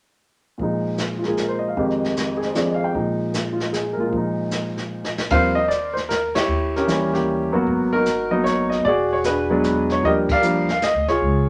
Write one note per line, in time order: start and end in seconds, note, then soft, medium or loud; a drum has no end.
0.58 1.76 A#2 soft
0.58 1.77 F3 soft
0.58 1.22 G#3 soft
0.58 brush sweep soft
0.58 kick soft
0.63 1.79 D#4 soft
0.98 snare soft
0.98 hi-hat pedal soft
1.18 1.25 F4 soft
1.23 1.76 G#3 soft
1.23 1.77 A#3 soft
1.23 1.78 F4 soft
1.23 snare soft
1.28 1.42 G#4 soft
1.37 1.56 A#4 soft
1.37 snare soft
1.37 hi-hat pedal soft
1.48 1.64 C5 soft
1.59 1.71 D#5 soft
1.68 1.82 F5 soft
1.77 2.95 F2 soft
1.77 2.95 D#3 soft
1.77 2.93 G#3 soft
1.77 2.96 G4 soft
1.77 brush sweep soft
1.77 kick soft
1.90 snare soft
2.04 snare soft
2.17 snare medium
2.17 hi-hat pedal soft
2.37 2.49 G#4 soft
2.42 2.60 C5 soft
2.42 snare soft
2.54 2.93 F3 soft
2.54 2.95 C4 soft
2.54 2.96 G#4 soft
2.54 2.73 D5 soft
2.54 snare soft
2.54 hi-hat pedal soft
2.65 2.82 D#5 soft
2.74 2.87 F5 medium
2.84 2.98 G5 soft
2.94 4.05 A#2 soft
2.94 4.09 F3 soft
2.94 3.96 G#3 soft
2.94 4.13 D#4 soft
2.94 brush sweep soft
2.94 kick soft
3.34 snare medium
3.34 hi-hat pedal medium
3.53 3.81 F4 soft
3.60 snare soft
3.73 4.03 G#4 soft
3.73 snare soft
3.73 hi-hat pedal soft
3.93 4.21 A#4 soft
3.97 4.12 G#3 soft
3.97 4.13 A#3 soft
3.97 4.14 F4 soft
4.07 5.28 A#2 soft
4.07 5.29 F3 soft
4.13 5.32 G#3 soft
4.13 brush sweep soft
4.13 kick soft
4.17 5.33 D#4 soft
4.51 snare medium
4.51 hi-hat pedal soft
4.77 snare soft
5.04 snare soft
5.18 snare medium
5.30 6.45 D#2 medium
5.30 5.54 F3 soft
5.30 5.54 G3 soft
5.30 5.54 A#3 soft
5.30 5.55 C4 medium
5.30 5.93 A#4 medium
5.30 5.92 C5 medium
5.30 5.57 F5 loud
5.30 brush sweep soft
5.30 kick medium
5.30 ride medium
5.55 5.69 D#5 medium
5.68 5.96 D5 medium
5.68 snare soft
5.68 hi-hat pedal soft
5.93 5.98 C5 medium
5.93 snare soft
6.09 6.33 A#4 medium
6.09 snare medium
6.09 hi-hat pedal soft
6.35 6.86 E4 medium
6.35 6.76 G4 medium
6.35 6.76 C#5 medium
6.35 snare medium
6.35 ride medium
6.48 7.49 D#2 medium
6.48 brush sweep soft
6.76 6.87 C#4 medium
6.76 7.12 G4 medium
6.76 7.12 A#4 medium
6.76 snare soft
6.87 7.48 E3 soft
6.87 7.48 G3 soft
6.87 7.13 A#3 soft
6.87 7.13 C#4 medium
6.87 snare medium
6.87 hi-hat pedal soft
7.14 7.51 A#3 soft
7.14 7.64 C#4 soft
7.14 7.51 G4 medium
7.14 snare soft
7.52 7.66 G1 medium
7.52 8.03 F#3 medium
7.52 8.04 A#3 medium
7.52 8.04 B3 medium
7.52 7.93 F#4 medium
7.67 8.81 G#1 medium
7.67 brush sweep soft
7.67 kick soft
7.93 8.31 D#4 medium
7.93 8.43 F#4 medium
7.93 8.29 A#4 loud
8.06 snare medium
8.06 hi-hat pedal soft
8.31 8.82 F#3 medium
8.31 8.82 A#3 medium
8.31 8.82 B3 medium
8.31 8.83 D#4 medium
8.31 8.44 D#5 medium
8.44 8.71 C#5 medium
8.44 snare soft
8.44 hi-hat pedal medium
8.70 8.85 D#5 medium
8.70 snare soft
8.84 9.99 E1 medium
8.84 9.48 F#4 medium
8.84 9.26 G#4 medium
8.84 9.11 D5 medium
8.84 brush sweep soft
8.84 kick soft
9.13 9.18 C#5 medium
9.24 9.49 D4 medium
9.24 9.87 G#4 soft
9.24 9.92 B4 medium
9.24 snare medium
9.24 hi-hat pedal medium
9.50 10.00 F#3 medium
9.50 10.01 G#3 medium
9.50 10.01 B3 medium
9.50 10.01 D4 medium
9.64 snare soft
9.64 hi-hat pedal soft
9.89 10.04 C#5 medium
9.89 snare soft
10.02 10.91 D#2 medium
10.02 10.26 F3 soft
10.02 10.26 G3 soft
10.02 10.27 A#3 medium
10.02 10.27 D4 medium
10.02 10.66 G4 medium
10.02 10.11 D#5 loud
10.02 brush sweep soft
10.02 kick soft
10.07 10.31 A#4 medium
10.29 10.80 A#4 medium
10.29 10.67 F5 loud
10.29 kick medium
10.29 ride medium
10.33 10.81 D5 medium
10.42 10.65 F3 medium
10.42 10.66 G3 soft
10.42 10.66 A#3 medium
10.42 10.66 D4 medium
10.42 hi-hat pedal medium
10.69 10.84 F5 medium
10.69 snare soft
10.82 11.07 D#5 medium
10.82 snare medium
10.82 hi-hat pedal soft
10.94 11.07 D2 soft
11.08 11.20 C2 medium
11.08 11.49 F4 medium
11.08 11.49 G#4 medium
11.08 11.49 C#5 medium
11.08 snare soft
11.22 11.49 C#2 medium
11.22 brush sweep soft
11.22 kick soft